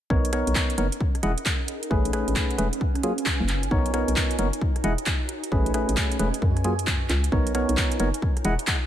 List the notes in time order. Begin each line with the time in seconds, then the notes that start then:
0.10 B1 B3 D#4 A#4 C#5, kick
0.25 closed hi-hat
0.33 B3 D#4 A#4 C#5, cross-stick, closed hi-hat
0.47 B1, closed hi-hat
0.55 kick, clap
0.70 closed hi-hat
0.78 F#1 B3 D#4 A#4 C#5, closed hi-hat
0.92 closed hi-hat
1.00 kick
1.15 cross-stick, closed hi-hat
1.23 E1 E4 G#4 D#5 F#5, closed hi-hat
1.38 closed hi-hat
1.46 kick, clap, closed hi-hat
1.68 C#4, closed hi-hat
1.83 closed hi-hat
1.91 A1 A3 C#4 G#4 B4, kick
2.05 closed hi-hat
2.13 A3 C#4 G#4 B4, cross-stick, closed hi-hat
2.20 G#5
2.28 A1, closed hi-hat
2.36 kick, clap, closed hi-hat
2.51 closed hi-hat
2.58 E1 A3 C#4 G#4 B4, closed hi-hat
2.73 closed hi-hat
2.81 kick
2.95 cross-stick, closed hi-hat
3.03 F#3 A#3 F4 G#4, closed hi-hat
3.18 closed hi-hat
3.26 kick, clap
3.40 F#1
3.49 clap, closed hi-hat
3.63 closed hi-hat
3.71 B1 B3 D#4 A#4 C#5, kick
3.86 closed hi-hat
3.94 B3 D#4 A#4 C#5, cross-stick, closed hi-hat
4.08 B1, closed hi-hat
4.16 kick, clap
4.31 closed hi-hat
4.39 F#1 B3 D#4 A#4 C#5, closed hi-hat
4.53 closed hi-hat
4.61 kick
4.76 cross-stick, closed hi-hat
4.84 E1 E4 G#4 D#5 F#5, closed hi-hat
4.94 G#5
4.98 closed hi-hat
5.06 kick, clap, closed hi-hat
5.29 C#4, closed hi-hat
5.44 closed hi-hat
5.52 A1 A3 C#4 G#4 B4, kick
5.66 closed hi-hat
5.74 A3 C#4 G#4 B4, cross-stick, closed hi-hat
5.89 A1, closed hi-hat
5.97 kick, clap, closed hi-hat
6.12 closed hi-hat
6.19 E1 A3 C#4 G#4 B4, closed hi-hat
6.34 closed hi-hat
6.42 F#2, kick
6.57 cross-stick, closed hi-hat
6.64 F#3 A#3 F4 G#4, closed hi-hat
6.79 closed hi-hat
6.87 kick, clap
7.10 C#2, clap, closed hi-hat
7.24 closed hi-hat
7.32 B1 B3 D#4 A#4 C#5, kick
7.47 closed hi-hat
7.55 B3 D#4 A#4 C#5, cross-stick, closed hi-hat
7.69 B1, closed hi-hat
7.77 kick, clap
7.92 closed hi-hat
8.00 F#1 B3 D#4 A#4 C#5, closed hi-hat
8.14 closed hi-hat
8.22 kick
8.37 cross-stick, closed hi-hat
8.45 E1 E4 G#4 D#5 F#5, closed hi-hat
8.59 closed hi-hat
8.67 kick, clap, closed hi-hat